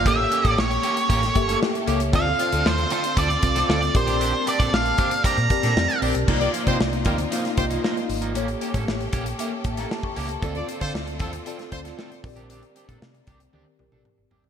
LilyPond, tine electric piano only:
\new Staff \with { instrumentName = "Tine electric piano" } { \time 4/4 \key bes \major \tempo 4 = 116 << { r1 | r1 | r1 | r1 |
r2 r8 a''16 bes''16 a''16 cis'''8 a''16~ | a''16 r2. r8. | r1 | } \\ { <bes g' a' cis''>4. r4 <bes g' a' e''>8. r16 <bes g' a' cis''>8 | <c' f' a' d''>4. r4 <c' f' a' f''>8. r16 <c' g' bes' d''>8~ | <c' g' bes' d''>4 r4. <c' g' bes' d''>8. r16 <c' g' bes' d''>8 | <bes ees' f' d''>4. r8 <bes ees' f' f''>8 <bes ees' f' ees''>4 r8 |
<bes g' a' cis''>4. r8 <bes g' a' e''>8 r4. | <c' f' a' d''>4. r8 <c' f' a' d''>8 <c' f' a' d''>4 <c' g' bes' d''>8~ | <c' g' bes' d''>4 r4 <c' g' bes' d''>8 <c' g' bes' d''>4 r8 | } >> }